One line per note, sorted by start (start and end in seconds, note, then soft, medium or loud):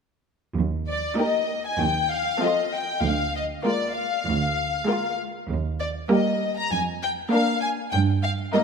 0.57 1.06 D#2 medium
0.88 1.17 D5 soft
1.18 1.64 A#3 soft
1.18 1.64 D#4 soft
1.18 1.64 G4 soft
1.18 1.65 A#4 soft
1.18 1.66 D#5 soft
1.66 1.81 G#5 soft
1.79 2.29 D#2 medium
1.79 2.11 G5 medium
2.11 2.42 F5 medium
2.42 2.88 F3 soft
2.42 2.88 C4 soft
2.42 2.88 F4 soft
2.42 2.88 A4 soft
2.42 2.73 D#5 medium
2.74 3.04 G5 medium
3.04 3.53 D2 soft
3.04 3.35 F5 medium
3.36 3.44 D#5 soft
3.65 4.11 G#3 soft
3.65 4.11 A#3 soft
3.65 4.11 F4 soft
3.65 4.11 A#4 soft
3.65 3.95 D5 soft
3.95 5.16 F5 medium
4.27 4.75 D2 medium
4.87 5.33 G#3 soft
4.87 5.33 A#3 soft
4.87 5.34 F4 soft
4.87 5.34 A#4 soft
5.50 5.98 D#2 medium
5.80 5.88 D5 soft
6.10 6.56 G3 soft
6.10 6.56 A#3 soft
6.10 6.56 G4 soft
6.10 6.56 A#4 soft
6.10 6.55 D#5 soft
6.57 6.72 A#5 medium
6.72 7.20 F2 medium
6.72 6.80 G#5 medium
7.02 7.10 G5 medium
7.31 7.78 A#3 soft
7.31 7.77 D4 soft
7.31 7.77 A#4 soft
7.31 7.61 F5 medium
7.61 7.69 G#5 medium
7.92 8.42 G2 medium
7.92 8.00 G5 medium
8.23 8.31 F5 medium
8.53 8.64 G3 soft
8.53 8.64 A#3 medium
8.53 8.64 D#4 soft
8.53 8.64 A#4 soft
8.53 8.62 D#5 medium